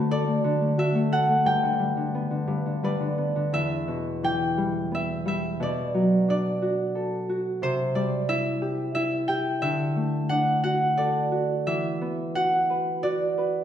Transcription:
Already playing: D3 A3 C4 F#4 B4
0.11 A4 D5
0.27 A3
0.44 D3
0.61 A3
0.78 F#4 E5
0.95 A3
1.12 A4 F#5
1.28 A3
1.45 G2 G5
1.63 D3
1.79 G3
1.97 D3
2.15 B3
2.31 D3
2.47 G2
2.66 D3
2.83 G3 B4 D5
3.00 D3
3.18 B3
3.36 D3
3.53 E2 E5
3.88 B2
4.23 E3 G5
4.58 G3
4.91 B3 E5
5.26 G3 E5
5.60 B2 D5
5.94 F#3
6.28 D4 D5
6.62 F#4
6.95 A4
7.29 F#4
7.62 C3 C5
7.95 G3 D5
8.28 E4 E5
8.62 G4
8.95 E4 E5
9.28 G4 G5
9.61 D3 E5
9.96 A3
10.29 D4 F#5
10.64 F#4 F#5
10.97 A4 D5
11.32 F#4
11.67 E3 E5
12.01 B3
12.35 F#4 F#5
12.70 B4
13.03 F#4 D5
13.38 B4

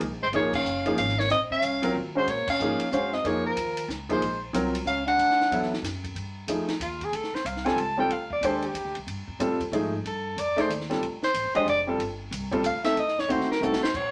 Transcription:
0.00 C#2, ride
0.11 A#1
0.21 G#1 G#3 C5
0.33 A#1 F3 A#3 D#4 G#4 C#5, ride
0.53 C#4 F5, kick, crash
0.64 F#1, hi-hat pedal
0.86 F3 A#3 D#4 G#4, ride
0.97 G#1 C#4 F5, hi-hat pedal, ride
1.08 snare
1.18 A#3 C#5, snare
1.30 A#1 C4 D#5, snare, ride
1.50 C#4 F5, kick
1.62 C2, hi-hat pedal, ride
1.82 F#3 C4 F4 A#4, ride
1.95 D#2
2.15 G#3 C#4 F#4 C5
2.27 A#2 A#3 C#5, ride
2.47 C#4 F5, muted upright bass stroke, kick, crash
2.60 G#2 F3 A#3 D#4 G#4, hi-hat pedal
2.79 muted upright bass stroke, ride
2.91 F#2 G#3 C#4 F#4 C5 F5, hi-hat pedal
3.13 C4 D#5, snare
3.24 F2 F3 A#3 D#4 G#4 C#5, ride
3.46 F3 A#4
3.56 D#2, hi-hat pedal, ride
3.77 ride
3.88 C#2, snare, hi-hat pedal
4.09 F3 G#3 A#3 D#4 G#4 C5, kick, ride
4.21 A#1, ride
4.53 C2 F#3 C4 F4 A#4, hi-hat pedal, ride
4.75 ride
4.86 C#2 C#4 F5, hi-hat pedal
5.06 D4 F#5, ride
5.18 D2, ride
5.30 snare
5.41 snare
5.50 E2 F#3 B3 E4 A4, ride
5.63 snare
5.73 snare
5.82 F#2, snare, hi-hat pedal, ride
6.04 kick, ride
6.15 G2, ride
6.48 F2 F3 A3 D#4 G#4, hi-hat pedal, ride
6.68 muted upright bass stroke, snare, ride
6.80 D#2 F4, hi-hat pedal, ride
7.01 G#4, kick, ride
7.12 D2 A4, ride
7.24 snare
7.33 C5, muted upright bass stroke, snare
7.45 C2 F5, hi-hat pedal, ride
7.56 snare
7.65 G3 C4 F4 A4 G#5, snare, ride
7.76 C#2 A5, ride
7.97 G3 C4 F4 A4 G5
8.09 D2 F5, ride
8.30 D5, kick
8.41 D#2 G#3 D4 G4 C5, hi-hat pedal, ride
8.46 A4
8.62 G4, ride
8.74 F2, hi-hat pedal, ride
8.84 D2
8.95 C2, ride
9.07 G2, ride
9.27 muted upright bass stroke, kick
9.39 A2 G3 C4 F4 A4, hi-hat pedal, ride
9.60 muted upright bass stroke, kick, ride
9.72 G#2 F3 A3 D#4 G#4, ride
10.04 G2 A4, ride
10.36 F2 D5, hi-hat pedal, ride
10.56 A3 D#4 G#4 C5 D5, snare, ride
10.69 D#2, hi-hat pedal, ride
10.81 snare
10.90 G3 C4 F4 A4, snare, ride
11.01 D2, ride
11.21 C5, muted upright bass stroke, snare
11.34 A1, hi-hat pedal, ride
11.44 G1
11.55 F1 G#3 D4 G4 C5 D#5, ride
11.66 F1 D5, ride
11.87 G3 C4 F4 A4
11.98 G1, ride
12.31 C2, hi-hat pedal, ride
12.51 G3 C4 F4 A4, kick, ride
12.63 D2 F5, hi-hat pedal, ride
12.83 A3 C4 D#4 A4 E5, muted upright bass stroke, snare, ride
12.96 F2 D#5, ride
13.08 snare
13.19 C#5, snare
13.28 D#2 A3 C4 D#4 F#4 C5, ride
13.41 snare
13.48 A#4, muted upright bass stroke, snare
13.61 C2 A3 C4 D#4 F#4 A4, hi-hat pedal
13.73 snare
13.81 C5, muted upright bass stroke, snare
13.94 A#1 C#5, kick, crash

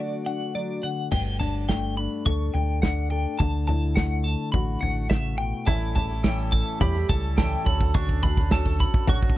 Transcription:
Already playing: D3 F#3 A3 D4
0.00 F#4 D5
0.26 D4 F#5
0.55 F#3 D5
0.83 D3 F#5
1.12 G1 G2 G5, kick, floor tom, crash
1.40 D4 A5, floor tom
1.69 A3 G5, kick, snare
1.97 D4 B5
2.26 D2 A4 C#6, kick, floor tom
2.54 D2 A3 G5, floor tom
2.82 D4 F#5, kick, snare
3.11 A4 G5
3.39 D2 D3 A5, kick, floor tom
3.68 E4 A5, floor tom
3.96 A3 F#5, kick, snare
4.24 E4 A5
4.52 A1 F#4 B5, kick, floor tom
4.81 A1 A3 F#5, floor tom
5.10 C#3 E5, kick, snare
5.38 B2 G5
5.65 A1 A2 E3 G3 C#4 E4 A4 C#5 A5, kick, floor tom
5.81 tambourine
5.94 G3 C#4 E4 A4 A5, kick, floor tom, tambourine
6.08 G3 C#4 E4 A4, tambourine
6.23 A2 E3 G3 C#4 E4 A4 C#5 G5, kick, snare, tambourine
6.38 tambourine
6.52 A5, kick, tambourine
6.67 tambourine
6.80 E2 G3 E4 G4 A4 C#5 B5, kick, floor tom
6.94 G3 C#4 E4 A4, tambourine
7.08 C#2 G3 C#4 E4 A4 A5, kick, floor tom, tambourine
7.23 tambourine
7.37 A2 E3 G3 C#4 E4 A4 C#5 G5, kick, snare, tambourine
7.64 D2 D3 F#3 A3 C#4 D4 A4 C#5 B5, kick, tambourine
7.68 F#4 A4
7.80 C#4 F#4 A4, kick
7.94 D3 A3 C#4 D4 F#4 A4 C#6, kick, floor tom, tambourine
8.09 kick, tambourine
8.22 A3 C#4 F#4 A4 B5, kick, floor tom, tambourine
8.37 C#4 F#4 A4, kick, tambourine
8.50 D3 F#3 A3 C#4 D4 F#4 A4 C#5 A5, kick, snare, tambourine
8.65 C#4 F#4 A4, kick, tambourine
8.80 B5, kick, tambourine
8.94 kick, tambourine
9.07 A1 F#3 D4 F#4 A4 C#5 C#6, kick, floor tom, tambourine
9.21 C#4 F#4 A4, kick
9.30 kick

